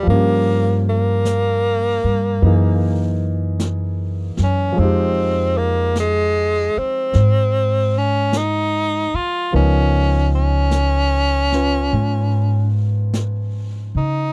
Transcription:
0.03 upright bass G2, grand piano F3 A#3
0.08 tenor saxophone A#3, grand piano C#4, brush sweep
0.14 grand piano G4
0.89 tenor saxophone A#3
1.25 brush sweep, snare, hi-hat pedal
2.04 upright bass G2
2.42 upright bass F#2, grand piano E3 A#3 D#4 G#4, brush sweep
3.60 brush sweep, snare, hi-hat pedal
4.37 upright bass F#2, snare
4.43 tenor saxophone C#4
4.72 grand piano F3 G#3
4.77 upright bass F2, tenor saxophone C4, grand piano D#4, brush sweep
4.83 grand piano G4
5.58 tenor saxophone A#3
5.96 brush sweep, snare, hi-hat pedal
6.00 tenor saxophone G#3
6.77 tenor saxophone C4, muted upright bass stroke
7.13 upright bass G#2, brush sweep, snare
7.98 tenor saxophone C#4
8.33 brush sweep, snare, hi-hat pedal
8.37 tenor saxophone D#4
9.14 tenor saxophone F4, muted upright bass stroke
9.51 upright bass C#2, grand piano F3 B3 D#4 A#4, brush sweep
9.55 tenor saxophone C#4
10.35 tenor saxophone C#4
10.71 brush sweep, snare, hi-hat pedal
11.52 grand piano C#4 F4 B4, snare
11.93 upright bass G#2, brush sweep
13.14 brush sweep, snare, hi-hat pedal
13.95 upright bass C#3, tenor saxophone D#4

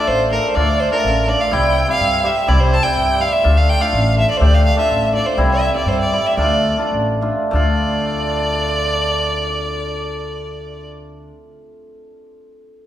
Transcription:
Already playing: hammered dulcimer A3 D4 F4
0.08 upright bass A1, violin C5
0.30 hammered dulcimer A3 D4 F4, violin A#4 C5
0.44 violin C5
0.55 upright bass D2, hammered dulcimer A3 D4 F4, violin D5
0.80 violin C5
0.91 hammered dulcimer A3 D4 F4, violin A#4
1.04 upright bass A1
1.27 hammered dulcimer A3 D4 F4, violin D5
1.41 violin F5
1.51 upright bass C2, hammered dulcimer G3 C4 E4, violin G5
1.88 hammered dulcimer G3 C4 E4, violin F5
2.00 upright bass G2
2.23 hammered dulcimer G3 C4 G4, violin E5
2.47 upright bass C2, hammered dulcimer G3 C4 E4, violin D5
2.60 violin C5
2.74 violin A5
2.83 hammered dulcimer G3 C4 E4, violin G5
2.97 upright bass G2
3.19 hammered dulcimer G3 C4 E4, violin F5
3.32 violin E5
3.44 upright bass D2, hammered dulcimer A3 D4 F4
3.57 violin F5
3.69 violin G5
3.80 hammered dulcimer A3 D4 F4, violin F5
3.93 upright bass A1
4.16 hammered dulcimer A3 D4 F4, violin E5
4.31 violin D5
4.37 hammered dulcimer A3 D4, violin C5
4.41 upright bass D2, hammered dulcimer G4, violin D5
4.54 violin F5
4.65 violin F5
4.76 hammered dulcimer A3 D4 F4, violin E5
4.89 upright bass A1
5.12 hammered dulcimer A3 D4 F4, violin D5
5.27 violin C5
5.37 upright bass C2, hammered dulcimer G3 C4 E4
5.52 violin E5
5.74 hammered dulcimer G3 C4 E4, violin D5
5.86 upright bass G2, violin C5
6.01 violin D5
6.12 hammered dulcimer G3 C4 E4
6.27 violin E5
6.37 upright bass D2, hammered dulcimer A3 D4 F4, violin D5
6.78 hammered dulcimer A3 D4 F4
6.92 upright bass A1
7.21 hammered dulcimer A3 D4 F4
7.51 upright bass D2, hammered dulcimer A3 D4, violin D5
7.55 hammered dulcimer F4

